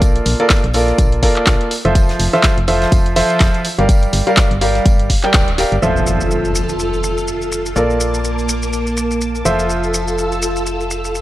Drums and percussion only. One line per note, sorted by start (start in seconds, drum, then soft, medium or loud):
0.02 kick loud
0.02 closed hi-hat medium
0.02 tambourine loud
0.16 closed hi-hat soft
0.26 open hi-hat loud
0.26 tambourine medium
0.40 closed hi-hat soft
0.50 kick loud
0.50 snare loud
0.50 clap loud
0.50 closed hi-hat medium
0.50 tambourine medium
0.64 closed hi-hat soft
0.74 open hi-hat loud
0.74 tambourine medium
0.88 snare soft
0.88 closed hi-hat soft
0.98 kick loud
0.98 closed hi-hat medium
0.98 tambourine medium
1.12 closed hi-hat soft
1.22 kick medium
1.22 open hi-hat loud
1.22 tambourine medium
1.36 clap soft
1.36 closed hi-hat soft
1.46 kick loud
1.46 snare loud
1.46 clap loud
1.46 closed hi-hat medium
1.46 tambourine medium
1.61 closed hi-hat soft
1.71 open hi-hat loud
1.71 tambourine medium
1.85 closed hi-hat soft
1.95 kick loud
1.95 closed hi-hat loud
1.95 tambourine medium
2.09 snare medium
2.09 closed hi-hat soft
2.19 open hi-hat loud
2.19 tambourine medium
2.33 snare soft
2.33 closed hi-hat soft
2.43 kick loud
2.43 snare loud
2.43 clap loud
2.43 closed hi-hat loud
2.43 tambourine medium
2.58 closed hi-hat soft
2.67 open hi-hat loud
2.67 tambourine medium
2.82 snare medium
2.82 closed hi-hat soft
2.92 kick loud
2.92 closed hi-hat medium
2.92 tambourine medium
3.06 closed hi-hat soft
3.16 snare soft
3.16 open hi-hat loud
3.16 tambourine medium
3.30 closed hi-hat soft
3.40 kick loud
3.40 snare loud
3.40 clap loud
3.40 closed hi-hat medium
3.40 tambourine medium
3.54 closed hi-hat soft
3.64 open hi-hat loud
3.64 tambourine medium
3.79 closed hi-hat soft
3.89 kick loud
3.89 closed hi-hat loud
3.89 tambourine loud
4.03 closed hi-hat soft
4.13 open hi-hat loud
4.13 tambourine medium
4.27 closed hi-hat soft
4.37 kick loud
4.37 snare loud
4.37 clap loud
4.37 closed hi-hat loud
4.37 tambourine medium
4.51 closed hi-hat soft
4.61 open hi-hat loud
4.61 tambourine medium
4.75 snare soft
4.75 closed hi-hat soft
4.86 kick loud
4.86 closed hi-hat loud
4.86 tambourine medium
4.99 closed hi-hat soft
5.10 kick medium
5.10 open hi-hat loud
5.10 tambourine medium
5.23 clap soft
5.23 closed hi-hat soft
5.34 kick loud
5.34 snare medium
5.34 clap loud
5.34 closed hi-hat medium
5.34 tambourine medium
5.48 closed hi-hat soft
5.58 snare loud
5.58 open hi-hat loud
5.58 tambourine medium
5.72 closed hi-hat soft
5.83 shaker soft
5.96 shaker soft
6.07 shaker medium
6.21 shaker soft
6.31 shaker soft
6.45 shaker soft
6.55 shaker medium
6.69 shaker soft
6.79 shaker soft
6.93 shaker soft
7.04 shaker medium
7.17 shaker soft
7.28 shaker soft
7.42 shaker soft
7.52 shaker medium
7.66 shaker soft
7.76 shaker soft
7.90 shaker soft
8.00 shaker medium
8.14 shaker soft
8.25 shaker soft
8.38 shaker soft
8.49 shaker medium
8.63 shaker soft
8.73 shaker soft
8.87 shaker soft
8.97 shaker medium
9.11 shaker soft
9.21 shaker soft
9.35 shaker soft
9.45 shaker medium
9.59 shaker soft
9.70 shaker soft
9.84 shaker soft
9.94 shaker medium
10.08 shaker soft
10.18 shaker soft
10.32 shaker soft
10.42 shaker medium
10.56 shaker soft
10.66 shaker soft
10.80 shaker soft
10.91 shaker medium
11.05 shaker soft
11.15 shaker soft